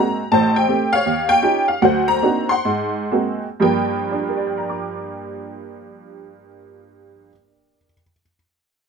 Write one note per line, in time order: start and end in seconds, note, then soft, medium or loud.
0.00 0.20 G#3 soft
0.00 0.20 A#3 soft
0.00 0.21 C4 soft
0.00 0.21 F#4 medium
0.00 0.29 A#5 medium
0.32 0.63 A1 medium
0.32 0.63 A2 medium
0.32 1.01 C5 medium
0.32 0.53 A5 loud
0.56 0.93 G5 medium
0.68 0.93 A3 soft
0.68 0.93 C4 soft
0.68 0.93 G4 medium
0.93 1.65 C#5 medium
0.93 1.30 F5 loud
1.06 1.38 D#2 medium
1.29 1.65 G5 loud
1.42 1.69 C#4 soft
1.42 1.69 D#4 soft
1.42 1.69 F4 soft
1.42 1.69 G4 medium
1.68 1.81 F5 medium
1.82 2.17 D2 medium
1.82 2.17 F#3 medium
1.82 2.63 C5 medium
1.82 2.06 F#5 medium
2.08 2.51 A#5 loud
2.22 2.52 A#3 medium
2.22 2.52 C4 soft
2.22 2.52 D4 soft
2.22 2.52 D#4 soft
2.22 2.52 F#4 medium
2.49 3.39 F#5 medium
2.49 3.38 C6 medium
2.65 3.05 G#2 medium
3.11 3.45 G#3 medium
3.11 3.45 A#3 soft
3.11 3.45 C4 soft
3.11 3.45 F#4 medium
3.60 7.28 G2 medium
3.60 7.28 F3 medium
3.60 7.29 G3 medium
3.60 7.30 A#3 medium
3.60 4.46 G5 medium
4.12 7.76 D4 soft
4.19 7.83 G4 soft
4.28 7.92 A#4 soft
4.37 8.01 D5 soft
4.47 8.11 G5 soft
4.58 8.22 A#5 soft
4.69 8.33 D6 soft